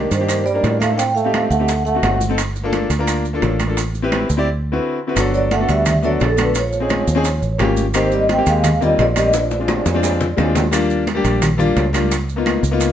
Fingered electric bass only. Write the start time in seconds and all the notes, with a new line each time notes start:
0.11 G2
0.64 A2
1.50 D2
2.03 G1
2.90 D2
3.43 A1
4.30 D2
5.16 G1
5.69 D2
6.21 A#1
7.08 D#2
7.42 A1
7.60 G#1
8.47 D#2
8.99 A#1
9.86 F2
10.38 D#2
11.25 A#1
11.77 C#2
12.63 C#2